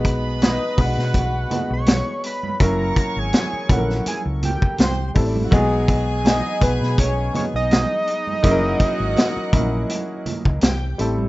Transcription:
Already playing: fingered electric bass B1, grand piano G#3 B3 D#4 F#4 B4, violin section B4 B5, vibraphone D#5
0.05 kick, closed hi-hat
0.42 analog synth lead D#5, snare, closed hi-hat, high conga
0.77 fingered electric bass B1, grand piano G#3 B3 D4 F#4 B4, analog synth lead F#5, kick, open hi-hat, muted conga
0.85 grand piano D#4
0.98 fingered electric bass B2, snare
1.14 fingered electric bass B1, kick, closed hi-hat, muted conga
1.50 grand piano G#3 B3 D#4 F#4 B4, closed hi-hat, muted conga, low conga
1.70 fingered electric bass B1, analog synth lead C#6
1.86 vibraphone C#5, snare, closed hi-hat, high conga
2.23 analog synth lead B5, closed hi-hat
2.43 high conga
2.60 fingered electric bass F#1, grand piano F#3 A#3 C#4 E4 A#4, violin section C#5 C#6, analog synth lead A#5, kick, closed hi-hat, muted conga
2.96 kick, closed hi-hat
3.16 fingered electric bass G#1, analog synth lead G#5
3.33 snare, closed hi-hat, high conga
3.53 muted fingered electric bass stroke
3.69 fingered electric bass A#1, grand piano F#3 A#3 C#4 E4 A4, analog synth lead F#5, kick, closed hi-hat, low conga
3.78 grand piano A#4
3.90 snare
4.06 analog synth lead G#5, muted fingered electric bass stroke, closed hi-hat, muted conga
4.26 fingered electric bass C#2
4.43 analog synth lead G5, closed hi-hat, muted conga, low conga
4.62 kick
4.78 fingered electric bass C2, violin section C5 C6, snare, closed hi-hat, high conga
5.14 fingered electric bass A1, grand piano G3 A3 C4 E4 A4, violin section C4 C5, kick, open hi-hat
5.26 violin section D4 D5
5.35 violin section E4 E5, high conga
5.44 violin section F#4 F#5
5.51 fingered electric bass B1, grand piano F#3 G#3 B3 D#4 G#4, violin section G#4 G#5, kick, closed hi-hat, muted conga
5.88 vibraphone D#5, kick, closed hi-hat
6.16 vibraphone F#5
6.25 analog synth lead D#5, snare, closed hi-hat, high conga
6.60 fingered electric bass B1, grand piano F#3 G#3 B3 D#4 B4, analog synth lead B4, kick, closed hi-hat, muted conga
6.81 fingered electric bass B2, snare
6.98 fingered electric bass B1, analog synth lead C#5, vibraphone G#5, kick, closed hi-hat, muted conga
7.33 grand piano F#3 G#3 B3 D#4 G#4, analog synth lead C#5, closed hi-hat, muted conga, low conga
7.54 fingered electric bass B1, analog synth lead D#5
7.71 snare, closed hi-hat, high conga
8.07 closed hi-hat
8.27 high conga
8.43 fingered electric bass F#1, grand piano F#3 A#3 C#4 E4 G#4, violin section F#4 F#5, kick, closed hi-hat, muted conga
8.51 grand piano A#4
8.80 kick, closed hi-hat
9.00 fingered electric bass G#1
9.17 snare, closed hi-hat, high conga
9.36 muted fingered electric bass stroke
9.52 fingered electric bass A#1, grand piano F#3 A#3 C#4 E4 A#4, kick, closed hi-hat, muted conga, low conga
9.89 closed hi-hat, muted conga
10.26 muted fingered electric bass stroke, closed hi-hat, muted conga, low conga
10.45 fingered electric bass C#2, kick
10.61 fingered electric bass C2, violin section G4 G5, snare, closed hi-hat, high conga
10.98 fingered electric bass A1, grand piano G3 A3 C4 E4 A4, closed hi-hat
11.18 high conga

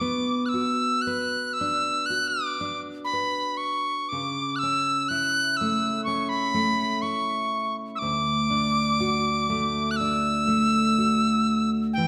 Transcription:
Already playing: steel-string acoustic guitar D4 E4 F#4, tin whistle D6
0.01 steel-string acoustic guitar B3
0.46 tin whistle E6 F#6
0.54 steel-string acoustic guitar F#4
1.02 tin whistle F#6
1.07 steel-string acoustic guitar B4
1.53 tin whistle E6
1.61 steel-string acoustic guitar D4
2.06 tin whistle F#6
2.10 steel-string acoustic guitar F#4
2.28 tin whistle D6
2.61 steel-string acoustic guitar D4
3.05 tin whistle B5
3.13 steel-string acoustic guitar B4
3.57 tin whistle C#6
4.09 steel-string acoustic guitar C#3, tin whistle D6
4.56 tin whistle E6 F#6
4.63 steel-string acoustic guitar C#4
5.08 steel-string acoustic guitar E4, tin whistle F#6
5.57 tin whistle E6
5.61 steel-string acoustic guitar A3
6.04 steel-string acoustic guitar C#4, tin whistle C#6
6.29 tin whistle B5
6.54 steel-string acoustic guitar A3
7.02 steel-string acoustic guitar E4, tin whistle C#6
7.95 tin whistle D6 E6
8.02 steel-string acoustic guitar D2
8.50 steel-string acoustic guitar D4
9.00 steel-string acoustic guitar F#4
9.50 steel-string acoustic guitar A3
9.91 tin whistle F#6
9.96 tin whistle E6
10.01 steel-string acoustic guitar D4
10.48 steel-string acoustic guitar A3
10.98 steel-string acoustic guitar F#4
11.93 tin whistle G5
11.98 steel-string acoustic guitar E3

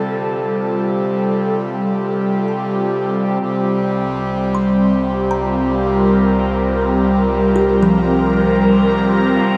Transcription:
Already playing: harmonium C3 G3, kalimba D3, analog synth pad G3 C4 F4 A4
2.48 kalimba A5
3.40 sub bass C2, harmonium C3 G3
3.92 analog synth pad C4
4.55 kalimba C6
5.05 analog synth pad F4
5.31 kalimba A#5
5.49 analog synth pad A#4
7.56 kalimba G4
7.83 kalimba F3
9.45 sub bass A#1

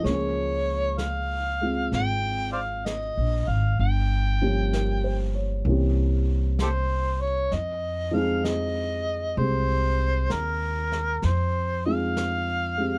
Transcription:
0.00 grand piano F3 G#3
0.04 upright bass C#2, grand piano A#3 C#4, harmonica C#5, brush sweep, snare
0.11 grand piano G#4
0.98 harmonica F5, brush sweep, snare, hi-hat pedal
1.61 grand piano G#3 C4 F4
1.92 upright bass G#1, harmonica G5, brush sweep, snare
2.52 harmonica C5 D5 F5
2.86 harmonica D#5, brush sweep, snare, hi-hat pedal
3.17 upright bass A#1
3.48 upright bass G#1, harmonica F5
3.79 upright bass G1, harmonica G5, brush sweep
4.42 grand piano F3 G3 A#3 C#4 G4
4.73 grand piano A#4, brush sweep, snare, hi-hat pedal
5.04 grand piano C5
5.35 grand piano C#5
5.65 upright bass C2, grand piano E3 A#3 C4, brush sweep
5.69 grand piano C#4 G4
6.59 harmonica G4 A4 C5, brush sweep, snare, hi-hat pedal
7.21 harmonica C#5
7.52 upright bass F2, harmonica D#5, brush sweep, snare
8.11 grand piano F3 G#3 C4, harmonica F5
8.15 grand piano D#4 G#4
8.45 harmonica D#5, brush sweep, snare, hi-hat pedal
9.37 upright bass C2, grand piano G#3 C4 G4, harmonica C5, brush sweep
10.30 upright bass D#2, harmonica A#4, brush sweep, snare, hi-hat pedal
10.92 snare
11.22 upright bass F2, harmonica C5, brush sweep, snare
11.86 grand piano G#3 C4 D#4 F4 G#4, harmonica F5
12.17 brush sweep, snare, hi-hat pedal
12.78 grand piano G#3 C4 G4

